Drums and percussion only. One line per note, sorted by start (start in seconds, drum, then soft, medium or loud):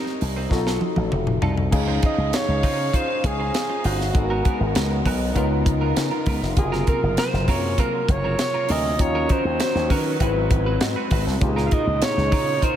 0.06 snare soft
0.21 open hi-hat medium
0.51 kick medium
0.51 snare soft
0.67 snare medium
0.81 high tom medium
0.96 high tom medium
1.12 mid tom medium
1.27 mid tom medium
1.42 floor tom medium
1.57 floor tom medium
1.72 kick loud
1.72 crash medium
2.03 kick medium
2.03 closed hi-hat medium
2.33 snare loud
2.33 closed hi-hat medium
2.63 kick medium
2.63 open hi-hat medium
2.93 kick medium
2.93 closed hi-hat medium
3.24 kick medium
3.24 closed hi-hat medium
3.54 snare loud
3.54 closed hi-hat medium
3.84 open hi-hat medium
4.01 snare soft
4.15 kick loud
4.15 closed hi-hat medium
4.45 kick medium
4.45 closed hi-hat medium
4.75 snare loud
4.75 closed hi-hat medium
5.06 kick medium
5.06 open hi-hat medium
5.36 kick medium
5.36 closed hi-hat medium
5.66 kick loud
5.66 closed hi-hat medium
5.97 snare loud
5.97 closed hi-hat medium
6.26 kick medium
6.26 open hi-hat medium
6.43 snare soft
6.57 kick loud
6.57 closed hi-hat loud
6.73 snare soft
6.87 kick medium
6.87 closed hi-hat medium
7.17 snare loud
7.17 closed hi-hat medium
7.33 snare soft
7.48 kick medium
7.48 open hi-hat medium
7.78 kick medium
7.78 closed hi-hat medium
8.09 kick loud
8.09 closed hi-hat medium
8.39 snare loud
8.39 closed hi-hat medium
8.69 open hi-hat medium
8.99 kick loud
8.99 closed hi-hat medium
9.29 kick medium
9.29 closed hi-hat medium
9.60 snare loud
9.60 closed hi-hat medium
9.76 snare soft
9.90 kick medium
9.90 open hi-hat medium
10.20 kick medium
10.20 closed hi-hat medium
10.51 kick loud
10.51 closed hi-hat medium
10.81 snare loud
10.81 closed hi-hat medium
11.11 kick loud
11.11 open hi-hat medium
11.27 snare soft
11.41 kick loud
11.41 closed hi-hat medium
11.57 snare soft
11.71 kick medium
11.71 closed hi-hat medium
12.02 snare loud
12.02 closed hi-hat medium
12.18 snare soft
12.32 kick medium
12.32 open hi-hat medium
12.62 kick medium
12.62 closed hi-hat medium